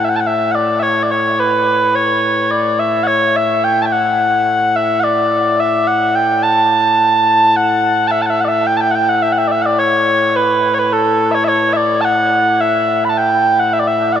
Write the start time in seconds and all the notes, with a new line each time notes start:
Already playing: A2
0.05 E5
0.09 F#5
0.16 A5
0.20 F#5
0.27 E5
0.52 D5 F#5
0.79 C#5 E5
1.03 D5
1.11 C#5
1.39 B4
1.95 C#5
2.51 D5
2.79 E5
3.04 C#5 F#5
3.36 E5
3.64 G5
3.82 G5 A5
3.92 F#5
4.76 E5
5.00 D5 F#5
5.60 E5
5.87 F#5
6.15 G5
6.43 A5
7.56 F#5
8.08 E5 A5
8.22 A5
8.26 E5 F#5
8.41 D5 F#5
8.48 E5
8.67 G5
8.77 A5
8.81 G5
8.91 F#5
8.95 G5
9.09 F#5
9.22 E5
9.33 F#5
9.38 E5
9.48 D5 E5
9.62 D5 F#5
9.79 C#5
10.36 B4
10.74 C#5
10.79 B4
10.93 A4
11.31 C#5 E5
11.44 C#5 E5
11.73 D5 E5
12.01 F#5 A5
12.61 E5
13.05 B5
13.09 A5
13.18 G5
13.59 F#5
13.73 E5
13.79 D5
13.87 E5
14.13 D5 F#5